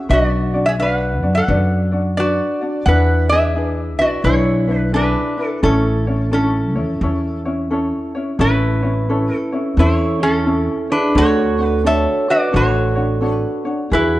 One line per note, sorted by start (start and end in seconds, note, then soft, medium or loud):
0.00 0.12 E5 medium
0.09 1.22 B1 medium
0.09 0.53 D4 medium
0.09 0.53 F#4 medium
0.09 0.53 B4 medium
0.09 0.52 D5 medium
0.09 0.27 D#5 loud
0.13 0.64 F#4 medium
0.27 0.68 D5 loud
0.54 0.78 D4 soft
0.54 0.79 F#4 soft
0.54 0.79 D5 medium
0.66 0.74 G#4 medium
0.66 0.71 E5 medium
0.79 1.23 D4 medium
0.79 1.22 F#4 medium
0.79 1.22 B4 medium
0.79 1.33 B4 medium
0.79 1.21 D5 medium
0.79 0.97 F5 medium
0.97 1.34 F#5 medium
1.22 1.39 F#2 medium
1.22 1.47 D4 soft
1.22 1.47 F#4 soft
1.22 1.48 D5 soft
1.35 2.01 A4 medium
1.35 2.00 F#5 medium
1.48 2.38 F#2 medium
1.48 1.92 D4 medium
1.48 1.92 F#4 medium
1.48 1.91 B4 medium
1.48 1.90 D5 medium
1.92 2.16 D4 soft
1.92 2.18 F#4 soft
1.92 2.17 D5 medium
2.17 2.61 D4 medium
2.17 2.61 F#4 medium
2.17 2.83 F#4 medium
2.17 2.60 B4 medium
2.17 2.88 D5 medium
2.17 2.60 D5 medium
2.61 2.86 D4 soft
2.61 2.87 F#4 soft
2.61 2.86 D5 soft
2.86 3.98 E2 medium
2.86 3.30 D4 medium
2.86 3.30 E4 medium
2.86 3.30 G#4 medium
2.86 3.30 B4 medium
2.86 3.28 B4 medium
2.86 3.29 F#5 loud
3.29 3.55 D4 soft
3.29 3.55 E4 medium
3.29 3.96 G#4 medium
3.29 3.56 B4 medium
3.29 4.01 E5 loud
3.56 3.99 D4 medium
3.56 3.99 E4 medium
3.56 3.99 G#4 medium
3.56 3.98 B4 medium
3.98 4.15 B1 medium
3.98 4.23 D4 soft
3.98 4.24 E4 soft
3.98 4.24 F#4 medium
3.98 4.24 B4 medium
3.98 4.24 D5 medium
4.24 5.14 B1 medium
4.24 4.68 D4 medium
4.24 4.67 E4 medium
4.24 4.90 E4 medium
4.24 4.68 G#4 medium
4.24 4.66 B4 medium
4.24 4.77 C#5 medium
4.67 4.93 D4 soft
4.67 4.94 E4 soft
4.67 4.93 B4 soft
4.77 4.93 B4 medium
4.93 5.37 D4 medium
4.93 5.60 D4 medium
4.93 5.38 E4 medium
4.93 5.37 G#4 medium
4.93 5.47 B4 medium
4.93 5.37 B4 medium
5.38 5.62 D4 soft
5.38 5.62 E4 soft
5.38 5.63 B4 soft
5.47 5.63 A4 medium
5.62 6.75 A1 medium
5.62 6.06 C#4 medium
5.62 6.29 C#4 medium
5.62 6.06 E4 medium
5.62 6.06 A4 medium
5.62 6.32 A4 medium
5.62 6.06 C#5 medium
6.07 6.31 C#4 soft
6.07 6.32 E4 soft
6.07 6.32 C#5 medium
6.32 6.75 C#4 medium
6.32 7.41 C#4 medium
6.32 6.76 E4 medium
6.32 6.75 A4 medium
6.32 7.41 A4 medium
6.32 6.74 C#5 medium
6.75 6.92 E2 medium
6.75 7.02 C#4 soft
6.75 7.01 E4 medium
6.75 7.01 C#5 medium
7.01 7.91 E2 medium
7.01 7.45 C#4 medium
7.01 7.45 E4 medium
7.01 7.45 A4 medium
7.01 7.44 C#5 medium
7.45 7.70 C#4 soft
7.45 7.71 E4 soft
7.45 7.70 C#5 medium
7.71 8.14 C#4 medium
7.71 8.14 E4 medium
7.71 8.14 A4 medium
7.71 8.14 C#5 medium
8.15 8.38 C#4 soft
8.15 8.39 E4 medium
8.15 8.39 C#5 medium
8.39 9.29 A1 medium
8.39 8.83 C#4 medium
8.39 9.73 E4 medium
8.39 8.83 E4 medium
8.39 9.74 E4 medium
8.39 8.82 A4 medium
8.39 9.36 B4 loud
8.39 8.81 C#5 medium
8.82 9.08 C#4 soft
8.82 9.08 E4 soft
8.82 9.08 C#5 soft
9.09 9.52 C#4 medium
9.09 9.52 E4 medium
9.09 9.52 A4 medium
9.09 9.51 C#5 medium
9.36 9.82 A4 loud
9.52 9.77 C#4 soft
9.52 9.77 E4 medium
9.52 9.77 C#5 medium
9.77 10.67 E2 medium
9.77 10.21 C#4 medium
9.77 10.20 E4 medium
9.77 10.19 E4 medium
9.77 10.17 A4 medium
9.77 10.21 A4 medium
9.77 9.96 C5 medium
9.77 10.19 C#5 medium
9.96 10.23 C#5 medium
10.20 10.45 C#4 soft
10.20 10.87 C#4 medium
10.20 10.85 E4 medium
10.20 10.45 E4 medium
10.20 10.93 A4 medium
10.20 10.46 C#5 medium
10.45 10.90 C#4 medium
10.45 10.90 E4 medium
10.45 10.89 A4 medium
10.45 10.89 C#5 medium
10.90 11.14 D4 medium
10.90 11.15 E4 soft
10.90 11.14 G#4 medium
10.90 11.17 B4 medium
10.90 11.15 C#5 soft
11.15 12.05 D2 medium
11.15 11.58 D4 medium
11.15 11.59 F#4 medium
11.15 11.82 F#4 medium
11.15 11.58 A4 medium
11.15 11.81 A4 medium
11.15 11.58 C#5 medium
11.15 11.66 C#5 loud
11.59 11.83 D4 soft
11.59 11.85 F#4 soft
11.59 11.84 C#5 medium
11.66 11.81 B4 loud
11.84 12.28 D4 medium
11.84 12.28 F#4 medium
11.84 12.27 A4 medium
11.84 12.26 A4 medium
11.84 12.25 C#5 medium
11.84 12.28 C#5 medium
11.84 12.30 E5 loud
12.28 12.51 D4 soft
12.28 12.52 F#4 soft
12.28 12.53 F#4 medium
12.28 12.52 B4 medium
12.28 12.55 D5 medium
12.52 13.43 A1 medium
12.52 12.96 D4 medium
12.52 12.95 F#4 medium
12.52 13.63 F#4 medium
12.52 12.96 A4 medium
12.52 13.62 A4 medium
12.52 12.94 C#5 medium
12.56 13.31 C#5 medium
12.96 13.21 D4 soft
12.96 13.21 F#4 medium
12.96 13.21 C#5 medium
13.21 13.65 D4 medium
13.21 13.65 F#4 medium
13.21 13.65 A4 medium
13.21 13.64 C#5 medium
13.31 13.63 B4 medium
13.65 13.91 D4 medium
13.65 13.91 F#4 soft
13.65 13.91 C#5 medium
13.90 14.20 E2 medium
13.90 14.20 E4 medium
13.90 14.20 F#4 medium
13.90 14.20 G#4 medium
13.90 14.20 B4 medium
13.94 14.20 E4 medium